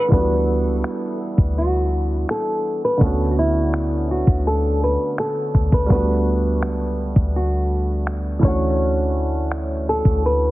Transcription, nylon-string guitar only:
0.00 0.11 B4 medium
0.13 1.61 B4 loud
1.58 2.26 F#4 medium
2.31 2.84 A4 medium
2.85 3.03 B4 medium
3.03 3.31 A4 loud
3.31 3.38 F#4 medium
3.39 4.06 E4 medium
4.11 4.47 F#4 medium
4.47 4.80 A4 medium
4.84 5.19 B4 medium
5.20 5.69 A4 medium
5.74 5.91 B4 medium
5.92 7.40 B4 loud
7.36 8.40 F#4 medium
8.45 9.89 C#5 loud
9.89 10.25 A4 medium
10.26 10.51 B4 loud

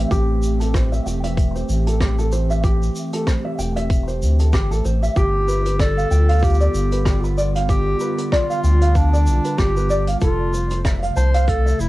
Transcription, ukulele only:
0.11 0.59 G4 loud
0.60 0.73 A4 medium
0.74 0.91 C5 medium
0.92 1.05 E5 medium
1.06 1.23 G5 medium
1.24 1.53 E5 medium
1.55 1.85 C5 medium
1.87 1.99 A4 medium
2.01 2.17 G4 medium
2.19 2.31 A4 medium
2.32 2.49 C5 medium
2.50 2.62 E5 medium
2.64 3.11 G4 medium
3.13 3.26 A4 medium
3.27 3.44 C5 medium
3.45 3.57 E5 medium
3.59 3.75 G5 medium
3.76 4.06 E5 medium
4.08 4.38 C5 medium
4.40 4.52 A4 medium
4.54 4.69 G4 medium
4.71 4.84 A4 medium
4.85 5.02 C5 medium
5.02 5.15 E5 medium
5.17 5.47 G4 loud
5.48 5.64 B4 medium
5.66 5.78 B4 medium
5.80 5.96 D5 medium
5.97 6.10 F5 medium
6.11 6.28 G5 medium
6.29 6.59 F5 loud
6.60 6.90 D5 medium
6.92 7.05 B4 medium
7.06 7.22 G4 medium
7.24 7.36 B4 medium
7.37 7.54 D5 medium
7.55 7.68 F5 medium
7.69 7.99 G4 medium
8.01 8.17 B4 medium
8.18 8.31 B4 medium
8.32 8.49 D5 medium
8.50 8.62 F5 medium
8.64 8.81 G5 medium
8.82 9.11 F5 medium
9.13 9.43 D5 medium
9.45 9.57 B4 medium
9.59 9.75 G4 medium
9.76 9.89 B4 medium
9.90 10.07 D5 medium
10.08 10.20 F5 medium
10.22 10.52 A4 loud
10.53 10.69 C5 medium
10.71 10.84 C5 medium
10.85 11.02 E5 medium
11.03 11.15 F5 medium
11.17 11.33 A5 medium
11.34 11.64 F5 loud
11.66 11.89 E5 medium

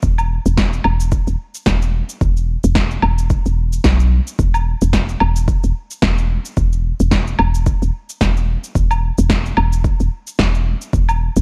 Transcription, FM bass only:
0.03 0.38 E1 medium
0.46 0.79 E1 loud
0.85 1.20 E1 loud
1.28 1.36 E1 medium
1.67 2.02 E1 medium
2.21 2.57 E1 medium
2.64 2.97 E1 loud
3.03 3.38 E1 loud
3.46 3.79 E1 medium
3.85 4.20 B1 medium
4.39 4.75 E1 medium
4.82 5.16 E1 loud
5.21 5.57 E1 loud
5.64 5.72 E1 medium
6.03 6.38 E1 medium
6.57 6.93 E1 medium
7.00 7.34 E1 loud
7.39 7.75 E1 loud
7.82 7.90 E1 medium
8.21 8.57 E1 medium
8.75 9.11 E1 medium
9.18 9.52 E1 loud
9.57 9.93 E1 loud
10.00 10.08 E1 medium
10.39 10.75 E1 loud
10.93 11.29 E1 medium
11.37 11.42 E1 loud

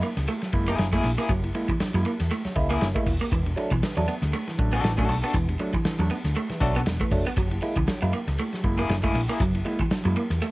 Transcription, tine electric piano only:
0.03 0.08 A#3 soft
0.03 0.08 E4 medium
0.28 0.34 A#3 soft
0.28 0.34 E4 soft
0.42 0.53 F#3 medium
0.53 0.67 G#3 medium
0.53 0.67 A#3 medium
0.53 0.67 E4 medium
0.79 0.92 F#3 medium
0.93 1.03 G#3 medium
0.93 1.03 A#3 medium
0.93 1.03 E4 medium
1.04 1.10 A#3 soft
1.04 1.10 E4 soft
1.30 1.43 F#3 medium
1.44 1.48 A#3 soft
1.44 1.48 E4 medium
1.54 1.68 G#3 medium
1.54 1.68 A#3 medium
1.54 1.68 E4 medium
1.80 1.93 F#3 medium
1.94 2.05 G#3 medium
1.94 2.04 A#3 medium
1.94 2.04 E4 medium
2.05 2.11 A#3 soft
2.05 2.11 E4 medium
2.31 2.36 A#3 soft
2.31 2.36 E4 soft
2.45 2.55 F#3 medium
2.55 2.69 G#3 medium
2.55 2.69 A#3 medium
2.55 2.69 E4 medium
2.81 2.95 F#3 medium
2.95 3.06 G#3 medium
2.95 3.05 A#3 medium
2.95 3.06 E4 medium
3.07 3.12 A#3 soft
3.07 3.12 E4 soft
3.32 3.45 E3 medium
3.46 3.50 A3 soft
3.46 3.50 D4 soft
3.57 3.70 F#3 medium
3.57 3.71 A3 medium
3.57 3.71 D4 medium
3.83 3.96 E3 medium
3.96 4.07 F#3 medium
3.96 4.07 A3 medium
3.96 4.07 D4 loud
4.08 4.14 A3 soft
4.08 4.14 D4 soft
4.33 4.39 A3 soft
4.33 4.39 D4 soft
4.47 4.58 E3 medium
4.58 4.72 F#3 medium
4.58 4.72 A3 medium
4.58 4.72 D4 medium
4.84 4.97 E3 medium
4.98 5.08 F#3 medium
4.98 5.08 A3 medium
4.98 5.08 D4 medium
5.09 5.15 A3 soft
5.09 5.15 D4 soft
5.34 5.48 E3 medium
5.49 5.53 A3 soft
5.49 5.53 D4 medium
5.59 5.73 F#3 medium
5.59 5.73 A3 medium
5.59 5.73 D4 medium
5.85 5.99 E3 medium
5.99 6.10 F#3 medium
5.99 6.09 A3 medium
5.99 6.09 D4 medium
6.11 6.16 A3 soft
6.11 6.16 D4 soft
6.36 6.41 A3 soft
6.36 6.41 D4 soft
6.50 6.61 E3 medium
6.61 6.75 F#3 medium
6.61 6.75 A3 medium
6.61 6.75 D4 medium
6.87 6.92 A3 soft
6.87 6.92 D4 soft
7.01 7.11 E3 medium
7.11 7.25 F#3 medium
7.11 7.25 A3 medium
7.11 7.25 D4 medium
7.37 7.51 F#3 medium
7.51 7.56 A#3 soft
7.51 7.56 E4 soft
7.62 7.76 G#3 medium
7.62 7.76 A#3 medium
7.62 7.76 E4 medium
7.88 8.01 F#3 medium
8.02 8.12 G#3 medium
8.02 8.12 A#3 medium
8.02 8.12 E4 medium
8.13 8.19 A#3 soft
8.13 8.19 E4 soft
8.38 8.44 A#3 soft
8.38 8.44 E4 soft
8.53 8.63 F#3 medium
8.64 8.77 G#3 medium
8.64 8.77 A#3 medium
8.64 8.78 E4 medium
8.89 9.03 F#3 medium
9.03 9.14 G#3 medium
9.03 9.13 A#3 medium
9.03 9.13 E4 medium
9.14 9.20 A#3 soft
9.14 9.20 E4 medium
9.40 9.53 F#3 medium
9.54 9.59 A#3 soft
9.54 9.59 E4 soft
9.65 9.79 G#3 medium
9.65 9.79 A#3 medium
9.65 9.79 E4 medium
9.91 10.04 F#3 medium
10.05 10.15 G#3 medium
10.05 10.15 A#3 medium
10.05 10.15 E4 medium
10.16 10.22 A#3 soft
10.16 10.22 E4 soft
10.42 10.47 A#3 soft
10.42 10.47 E4 soft

